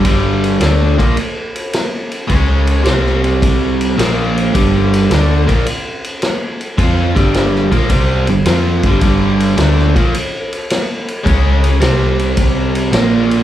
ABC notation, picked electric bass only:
X:1
M:4/4
L:1/8
Q:"Swing" 1/4=107
K:Gm
V:1 name="Picked electric bass" clef=bass
G,,,2 D,, B,,, z4 | ^C,,2 =C,,4 B,,,2 | G,,,2 D,, B,,, z4 | F,, G,,,2 B,,, C,, G,,, F,, G,,, |
G,,,2 D,, B,,, z4 | ^C,,2 =C,,4 B,,,2 |]